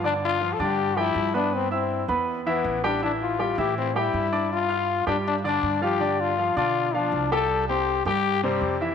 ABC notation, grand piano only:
X:1
M:4/4
L:1/8
Q:1/4=161
K:C
V:1 name="Grand piano"
[D,Dd]2 [F,Ff] [D,Dd]2 [F,Gg]2 [B,Bb]- | [B,Bb] [Eee']2 [B,Bb]2 [E,Ee]2 [G,Gg] | [E,Ee]2 [G,Gg] [E,Ee]2 [G,Gg]2 [Ddd']- | [Ddd'] [Fff']2 [G,Gg]2 [D,Dd]2 [F,Ff] |
[D,Dd]2 [F,Ff] [D,Dd]2 [F,Ff]2 [G,Gg]- | [G,Gg] [Ccc']2 [G,Gg]2 [C,Cc]2 [E,Ee] |]